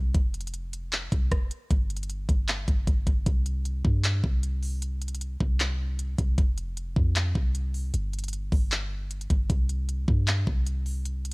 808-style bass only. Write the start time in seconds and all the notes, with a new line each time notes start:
Already playing: C2
0.15 F1
1.12 C2
1.31 F1
1.71 G1
2.29 G1
2.68 G1
2.87 G1
3.07 G1
3.26 C2
3.85 G2
4.24 C2
5.41 C2
6.18 C2
6.38 F1
6.96 F2
7.35 C2
7.94 G1
8.52 G1
9.30 G1
9.50 C2
10.08 G2
10.47 C2